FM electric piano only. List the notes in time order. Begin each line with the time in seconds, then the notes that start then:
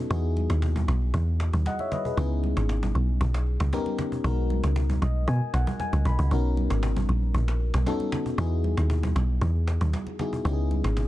Already playing: B3 C#4 D#4 F#4 A4
0.10 B3 D#4 E4 F#4 G#4
1.67 D#5 F#5
1.80 C#5 E5
1.92 B4 D#5
2.06 G#4 B4
2.17 B3 C#4 D#4 E4 G#4
3.73 B3 C#4 D#4 G4 A#4
4.24 G#3 B3 D#4 F#4 A#4
5.03 D#5
5.29 G#5
5.54 F#5
5.80 G#5
6.06 B5
6.31 B3 C#4 D#4 F#4 A#4
7.87 B3 C#4 D#4 F#4 A4
8.38 B3 D#4 E4 F#4 G#4
10.20 B3 D#4 E4 F#4 G#4
10.45 B3 C#4 D#4 E4 G4
10.53 G#4